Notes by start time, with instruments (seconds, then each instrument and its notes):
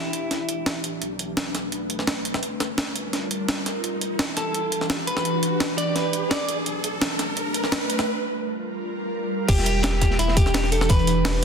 Already playing: sub bass E1, ambient pad E3 D4 G4, clean electric guitar E4, riser
0.13 closed hi-hat
0.31 sub bass E1, snare, closed hi-hat
0.49 closed hi-hat
0.66 sub bass E1, snare, closed hi-hat
0.84 sub bass D1, closed hi-hat
1.02 sub bass B1, ambient pad A3 B4, closed hi-hat
1.19 closed hi-hat
1.37 snare, closed hi-hat
1.55 snare, closed hi-hat
1.72 sub bass B1, closed hi-hat
1.90 closed hi-hat
1.99 snare
2.07 snare, closed hi-hat
2.25 closed hi-hat
2.34 snare
2.42 sub bass G1, ambient pad G3 F4 A#4, closed hi-hat
2.60 snare, closed hi-hat
2.78 snare, closed hi-hat
2.96 closed hi-hat
3.13 sub bass G1, snare, closed hi-hat
3.31 closed hi-hat
3.48 sub bass G1, snare, closed hi-hat
3.66 sub bass F1, snare, closed hi-hat
3.83 sub bass E1, ambient pad E3 D4 G4, closed hi-hat
4.01 closed hi-hat
4.19 snare, closed hi-hat
4.37 clean electric guitar A4, snare, closed hi-hat
4.54 sub bass E1, closed hi-hat
4.72 closed hi-hat
4.81 snare
4.90 snare, closed hi-hat
5.07 clean electric guitar B4, closed hi-hat
5.17 snare
5.25 sub bass E1, closed hi-hat
5.43 closed hi-hat
5.60 snare, closed hi-hat
5.78 clean electric guitar D5, closed hi-hat
5.95 sub bass E1, clean electric guitar B4, snare, closed hi-hat
6.13 closed hi-hat
6.31 sub bass E1, clean electric guitar D5, snare, closed hi-hat
6.49 sub bass D1, closed hi-hat
6.66 sub bass B1, ambient pad A3 B4, closed hi-hat
6.84 closed hi-hat
7.02 snare, closed hi-hat
7.19 snare, closed hi-hat
7.37 sub bass B1, closed hi-hat
7.54 closed hi-hat
7.64 snare
7.72 snare, closed hi-hat
7.90 closed hi-hat
7.99 snare
8.07 ambient pad G3 F4 A#4
9.48 sub bass E1, ambient pad E3 D4 G4, clean electric guitar G4, kick, closed hi-hat, crash
9.58 snare
9.66 closed hi-hat
9.83 clean electric guitar G4, snare, closed hi-hat
9.93 snare
10.01 kick, snare, closed hi-hat
10.11 snare
10.19 sub bass E1, clean electric guitar E4, closed hi-hat
10.28 snare
10.37 clean electric guitar G4, kick, closed hi-hat
10.46 snare
10.54 snare, closed hi-hat
10.64 snare
10.72 clean electric guitar A4, closed hi-hat
10.81 snare
10.89 sub bass E1, clean electric guitar B4, kick, closed hi-hat
10.99 closed hi-hat
11.07 closed hi-hat
11.25 snare, closed hi-hat, open hi-hat